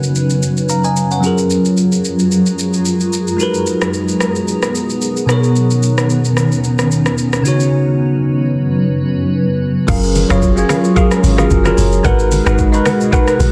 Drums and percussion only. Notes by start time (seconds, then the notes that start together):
0.03 shaker
0.16 shaker
0.30 shaker
0.43 shaker
0.57 shaker
0.69 shaker
0.84 shaker
0.97 shaker
1.11 shaker
1.23 shaker
1.38 shaker
1.50 shaker
1.65 shaker
1.77 shaker
1.92 shaker
2.05 shaker
2.19 shaker
2.32 shaker
2.46 shaker
2.59 shaker
2.73 shaker
2.85 shaker
3.00 shaker
3.13 shaker
3.28 shaker
3.40 shaker
3.54 shaker
3.67 shaker
3.82 cross-stick, shaker
3.93 shaker
4.08 shaker
4.20 cross-stick, shaker
4.36 shaker
4.48 shaker
4.62 cross-stick, shaker
4.75 shaker
4.90 shaker
5.02 shaker
5.17 shaker
5.29 cross-stick, shaker
5.44 shaker
5.56 shaker
5.70 shaker
5.83 shaker
5.98 cross-stick, shaker
6.10 shaker
6.25 shaker
6.37 cross-stick, shaker
6.52 shaker
6.64 shaker
6.79 cross-stick, shaker
6.91 shaker
7.06 cross-stick, shaker
7.18 shaker
7.33 cross-stick, shaker
7.46 shaker
7.60 shaker
9.88 kick, crash, low conga, shaker
10.03 shaker
10.15 open hi-hat, high conga, shaker
10.30 cross-stick, shaker
10.42 kick, shaker
10.57 shaker
10.69 cross-stick, open hi-hat, high conga, shaker
10.84 shaker
10.97 kick, shaker
11.11 cross-stick, shaker
11.23 open hi-hat, high conga, shaker
11.38 cross-stick, high conga, shaker
11.50 kick, shaker
11.65 cross-stick, high conga, shaker
11.77 open hi-hat, low conga, shaker
11.93 shaker
12.05 kick, low conga, shaker
12.19 shaker
12.32 open hi-hat, high conga, shaker
12.47 cross-stick, shaker
12.58 kick, shaker
12.73 shaker
12.86 cross-stick, open hi-hat, high conga, shaker
13.01 shaker
13.13 kick, shaker
13.27 cross-stick, shaker
13.39 open hi-hat, high conga, shaker